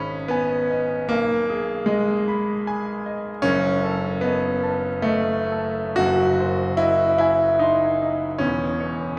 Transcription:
0.00 1.03 G#1 medium
0.00 0.29 C#4 loud
0.00 1.12 D#4 medium
0.00 1.13 G#4 medium
0.00 0.14 D#5 medium
0.00 0.55 B5 medium
0.28 1.09 B3 loud
0.28 0.95 G#5 medium
0.71 1.10 D#5 medium
1.09 3.41 B1 medium
1.09 1.87 A#3 loud
1.50 2.12 G#4 medium
1.86 2.26 G#3 loud
1.86 2.51 D#5 medium
2.28 2.91 B5 medium
2.67 3.29 G#5 medium
3.06 3.45 D#5 medium
3.42 5.92 F#1 medium
3.42 5.93 F#2 medium
3.42 4.22 C#4 loud
3.84 4.47 A4 medium
4.21 5.03 B3 loud
4.21 4.87 D#5 medium
4.63 5.31 A5 medium
5.02 5.96 A3 loud
5.02 5.79 D#5 medium
5.52 5.98 A4 medium
5.96 8.38 F#1 medium
5.96 8.38 F#2 medium
5.96 6.79 F#4 loud
6.40 7.05 C5 medium
6.77 7.17 E4 loud
6.77 7.45 D#5 medium
7.18 7.60 E4 loud
7.18 7.86 G#5 medium
7.59 8.40 D#4 medium
7.59 8.26 C6 medium
8.02 8.41 D#5 medium
8.38 9.19 E1 medium
8.38 9.19 E2 medium
8.38 9.19 C#4 loud
8.80 9.19 C#5 medium

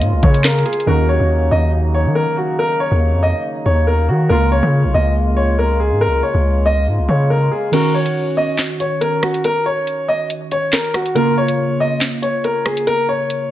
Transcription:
0.00 0.14 G#2 loud
0.00 0.83 C#3 medium
0.00 0.84 C#3 medium
0.00 0.84 G#3 medium
0.00 0.83 A#3 medium
0.00 0.84 F4 medium
0.00 closed hi-hat medium
0.13 0.22 C#2 loud
0.23 0.64 C#3 loud
0.23 0.42 C#5 medium
0.23 kick loud
0.34 closed hi-hat medium
0.44 0.63 A#4 medium
0.44 snare loud
0.44 clap loud
0.44 closed hi-hat soft
0.51 closed hi-hat medium
0.59 closed hi-hat medium
0.66 0.84 G#4 medium
0.66 closed hi-hat medium
0.73 closed hi-hat medium
0.80 closed hi-hat medium
0.86 1.19 D#2 loud
0.86 7.69 C#3 medium
0.86 4.25 D#3 medium
0.86 4.27 F#3 medium
0.86 7.69 A#3 medium
0.86 4.26 C#4 medium
0.86 4.27 D#4 medium
0.86 4.27 F#4 medium
0.86 1.06 A#4 medium
1.09 1.49 C#5 medium
1.20 1.50 D#2 loud
1.51 2.07 D#2 loud
1.51 1.70 D#5 medium
1.94 2.13 C#5 medium
2.06 2.26 D#3 medium
2.15 2.34 A#4 medium
2.37 2.56 F#4 medium
2.59 2.77 A#4 loud
2.80 3.20 C#5 medium
2.91 3.14 D#2 loud
3.13 3.33 F2 loud
3.23 3.41 D#5 medium
3.66 4.10 D#2 loud
3.66 3.84 C#5 medium
3.87 4.06 A#4 medium
4.09 4.29 D#3 loud
4.09 4.27 F#4 medium
4.29 4.61 C#2 loud
4.29 7.68 C#3 medium
4.29 7.69 G#3 medium
4.29 7.69 A#3 medium
4.29 7.69 F4 medium
4.29 7.70 F4 medium
4.29 4.48 A#4 loud
4.52 4.92 C#5 medium
4.63 4.86 C#3 loud
4.84 4.94 B1 loud
4.94 5.93 C#2 loud
4.94 5.13 D#5 medium
5.37 5.55 C#5 medium
5.59 5.77 A#4 medium
5.80 5.98 G#4 medium
5.91 6.09 G#2 loud
6.01 6.20 A#4 loud
6.07 6.22 C#2 loud
6.23 6.63 C#5 medium
6.34 6.89 C#2 loud
6.66 6.84 D#5 medium
6.87 7.00 G#2 loud
6.98 7.08 C#2 medium
7.09 7.50 C#3 loud
7.09 7.27 C#5 medium
7.30 7.49 A#4 medium
7.51 7.70 G#4 medium
7.71 11.11 D#3 medium
7.71 11.12 C#4 medium
7.71 11.12 F#4 medium
7.71 7.91 A#4 loud
7.71 closed hi-hat medium
7.71 crash medium
7.94 8.35 C#5 medium
8.06 closed hi-hat medium
8.37 8.56 D#5 medium
8.59 snare loud
8.59 clap medium
8.59 closed hi-hat medium
8.80 8.99 C#5 medium
8.80 closed hi-hat medium
9.01 9.20 A#4 medium
9.01 closed hi-hat medium
9.23 9.41 F#4 medium
9.23 cross-stick loud
9.34 closed hi-hat medium
9.44 9.63 A#4 loud
9.44 closed hi-hat medium
9.66 10.06 C#5 medium
9.87 closed hi-hat medium
10.08 10.27 D#5 medium
10.30 closed hi-hat medium
10.51 10.70 C#5 medium
10.51 closed hi-hat medium
10.73 10.91 A#4 medium
10.73 snare loud
10.73 clap loud
10.84 closed hi-hat medium
10.94 11.13 F#4 medium
10.94 cross-stick loud
10.94 closed hi-hat medium
11.06 closed hi-hat medium
11.14 13.51 C#3 medium
11.14 13.51 A#3 medium
11.14 13.51 F4 medium
11.14 11.34 A#4 loud
11.14 closed hi-hat medium
11.38 11.78 C#5 medium
11.48 closed hi-hat medium
11.80 11.99 D#5 medium
12.01 snare loud
12.01 clap medium
12.01 closed hi-hat medium
12.22 12.41 C#5 medium
12.22 closed hi-hat medium
12.44 12.63 A#4 medium
12.44 closed hi-hat medium
12.66 12.84 G#4 medium
12.66 cross-stick loud
12.77 closed hi-hat medium
12.87 13.06 A#4 loud
12.87 closed hi-hat medium
13.09 13.49 C#5 medium
13.30 closed hi-hat medium

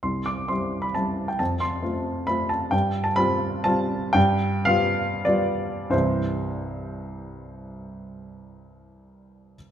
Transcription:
0.03 0.48 C2 soft
0.03 0.26 C6 medium
0.26 0.49 D6 medium
0.48 0.92 G3 soft
0.48 0.92 C4 soft
0.48 0.92 E4 soft
0.48 0.84 C6 medium
0.82 0.95 B5 medium
0.94 1.36 G3 soft
0.94 1.36 C4 soft
0.94 1.36 E4 soft
0.94 1.29 A5 medium
1.28 1.40 G5 soft
1.39 1.82 F2 soft
1.39 1.61 A5 medium
1.60 2.28 C6 medium
1.82 2.24 A3 soft
1.82 2.24 C4 soft
1.82 2.25 F4 soft
2.27 2.68 A3 soft
2.27 2.68 C4 soft
2.27 2.69 F4 soft
2.27 2.50 B5 medium
2.49 2.72 A5 medium
2.71 3.16 G2 soft
2.71 3.05 G5 medium
3.04 3.16 A5 medium
3.16 3.61 G3 soft
3.16 3.61 C4 soft
3.16 3.61 F4 medium
3.16 3.65 B5 medium
3.64 4.11 G3 soft
3.64 4.11 C4 soft
3.64 4.11 F4 medium
3.64 4.15 A5 medium
4.13 4.65 G2 medium
4.13 4.66 G5 medium
4.65 5.22 G3 soft
4.65 5.22 B3 medium
4.65 5.22 F4 medium
4.65 5.25 F5 medium
5.25 5.88 G3 soft
5.25 5.88 B3 soft
5.25 5.88 F4 medium
5.25 5.91 D5 medium
5.90 9.55 C2 medium
5.90 9.55 G2 soft
5.90 9.56 E3 soft
5.90 9.56 G3 soft
5.90 9.56 C4 soft
5.90 9.56 E4 soft
5.90 9.55 C5 medium

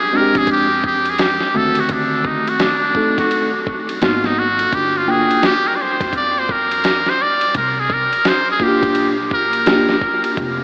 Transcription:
0.00 0.18 G#4 loud
0.13 0.66 G#3 medium
0.13 0.66 C4 medium
0.13 0.67 D4 medium
0.13 0.22 F#4 medium
0.13 0.39 A#4 medium
0.20 0.70 G4 medium
0.35 1.37 F2 medium
0.35 0.50 G#4 loud
0.35 kick loud
0.35 snare soft
0.35 ride medium
0.47 kick loud
0.47 ride medium
0.51 0.83 G4 loud
0.84 1.11 G4 medium
0.84 kick medium
1.05 ride medium
1.10 1.23 G#4 medium
1.18 1.58 G4 medium
1.18 snare loud
1.18 hi-hat pedal soft
1.18 ride medium
1.40 snare soft
1.54 2.35 D2 medium
1.54 2.70 D#3 medium
1.54 2.70 A3 medium
1.54 2.70 C4 medium
1.54 2.70 F#4 medium
1.54 1.81 A4 medium
1.75 ride medium
1.80 1.94 F#4 medium
1.89 2.28 D4 medium
1.89 kick loud
1.89 ride medium
2.25 2.50 D#4 medium
2.25 kick medium
2.47 2.63 F#4 medium
2.47 ride soft
2.60 2.91 D#2 medium
2.60 3.19 D4 medium
2.60 snare loud
2.60 hi-hat pedal soft
2.60 ride medium
2.95 3.49 A3 medium
2.95 3.49 C4 soft
2.95 3.49 D#4 medium
2.95 3.49 A4 medium
2.95 kick medium
3.18 3.52 F#4 medium
3.18 kick medium
3.18 snare soft
3.18 ride medium
3.31 ride medium
3.67 kick loud
3.89 ride medium
4.02 4.63 G#1 loud
4.02 4.46 A#3 medium
4.02 4.46 B3 medium
4.02 4.46 D#4 medium
4.02 4.27 F4 medium
4.02 4.46 F#4 medium
4.02 snare loud
4.02 hi-hat pedal soft
4.02 ride medium
4.24 4.41 D#4 medium
4.24 snare soft
4.39 4.76 F#4 loud
4.59 ride medium
4.73 5.23 G1 loud
4.73 4.99 G4 loud
4.73 kick loud
4.73 ride medium
4.97 5.12 F4 medium
5.07 5.52 A#3 medium
5.07 5.52 D4 medium
5.07 5.52 F4 medium
5.07 5.47 G#4 medium
5.07 5.52 G5 medium
5.31 ride medium
5.43 5.69 G4 loud
5.43 snare loud
5.43 hi-hat pedal soft
5.43 ride medium
5.68 5.78 A#4 medium
5.76 5.83 D5 medium
5.81 6.15 C5 medium
6.01 7.02 F2 medium
6.01 kick loud
6.01 snare soft
6.01 ride medium
6.13 6.40 D5 loud
6.13 kick loud
6.13 ride medium
6.39 6.53 C5 medium
6.49 7.11 A#4 loud
6.49 kick medium
6.71 ride medium
6.84 snare medium
6.84 hi-hat pedal soft
6.84 ride medium
7.06 7.23 C5 medium
7.06 snare soft
7.22 7.56 D5 loud
7.41 ride medium
7.55 8.05 C2 medium
7.55 7.81 A#4 medium
7.55 kick loud
7.55 ride medium
7.80 7.94 G#4 medium
7.90 8.30 A#4 medium
7.90 kick loud
8.13 ride medium
8.25 8.49 C5 medium
8.25 snare loud
8.25 hi-hat pedal soft
8.25 ride medium
8.51 8.64 G#4 medium
8.60 9.14 A#3 medium
8.60 9.14 D4 medium
8.60 9.14 F4 medium
8.60 8.69 F#4 medium
8.60 9.08 G4 medium
8.60 kick medium
8.68 9.17 G4 medium
8.83 9.85 A#2 medium
8.83 kick loud
8.83 ride medium
8.95 ride medium
9.31 10.34 A#4 medium
9.31 kick loud
9.53 ride medium
9.66 9.94 A#3 medium
9.66 9.94 D4 medium
9.66 9.94 F4 medium
9.66 9.94 G4 medium
9.66 snare medium
9.66 hi-hat pedal soft
9.66 ride medium
9.89 snare soft
10.01 kick medium
10.24 ride medium
10.37 10.64 F1 loud
10.37 kick loud
10.37 ride medium

